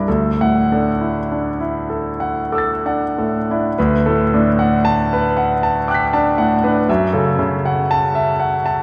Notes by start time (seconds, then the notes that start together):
0.08 D2 A4
0.41 A2 F#5
0.72 D4 A4
1.01 E4
1.32 D4
1.60 E4
1.90 A4
2.20 F#5
2.52 A4 D6 E6
2.58 A6
2.86 D4 F#5
3.18 A2 A4
3.51 D4 E4
3.79 D2 B4
4.06 A2 A4
4.34 A2 D4
4.59 F#5
4.85 A5
5.13 B4
5.37 F#5
5.63 A5
5.88 G5 D6 F#6
5.94 B6
6.13 D4 A5
6.38 A2 F#5
6.64 D4 B4
6.89 F#2 E5
7.13 C#3 A4
7.39 C#3
7.65 F#5
7.91 A5
8.15 E5
8.40 F#5
8.66 A5